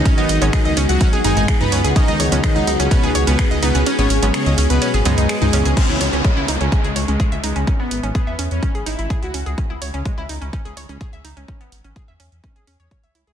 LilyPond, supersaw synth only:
\new Staff \with { instrumentName = "Supersaw synth" } { \time 4/4 \key gis \phrygian \tempo 4 = 126 r16 <dis dis'>8 r16 <dis dis'>8 r16 <fis fis'>8 r16 <gis gis'>8 r16 <b b'>8 r16 | <dis dis'>8 r8 <dis dis'>16 r8. <b, b>8 r16 <b, b>8 r16 <b, b>8 | r16 <cis cis'>8 r16 <cis cis'>8 r16 <b, b>8 r16 <gis, gis>8 r16 <gis, gis>8 r16 | cis'8 r8 cis'16 r8. gis8 r16 gis8 r16 gis8 |
r16 b8 r16 b8 r16 cis'8 r16 e'8 r16 fis'8 r16 | r1 | r1 | }